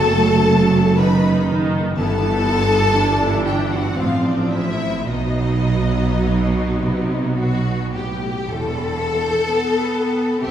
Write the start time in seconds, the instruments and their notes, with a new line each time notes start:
Already playing: double bass section F#1, cello section F#2, violin section A4 A5
0.02 viola section F#3 A3
0.98 viola section D#3 D#4, violin section B4 B5
1.48 viola section D#3
1.96 double bass section G1, cello section G2, viola section E3 B3, violin section A4 A5
2.46 viola section D3
2.94 viola section E3 D4
3.46 violin section G4 G5
3.71 violin section F#4 F#5
3.98 double bass section A1, cello section A2, viola section F3 C4, violin section F4 F5
4.26 violin section D4 D5
4.52 violin section E4 E5
5.07 double bass section B1, cello section B2, viola section F#3 B3, violin section D#4 D#5
6.22 cello section B2
6.79 cello section C3
7.35 cello section B2, violin section F#4
7.93 cello section A2, violin section G4
8.47 double bass section E1, cello section E2, violin section A4 G5
8.73 violin section B5
8.99 violin section E6
9.24 violin section G6
9.47 viola section B3, violin section E6
9.71 violin section B5
9.95 violin section G5
10.19 violin section B5
10.41 double bass section C2, cello section C3, viola section C4, violin section G4 E5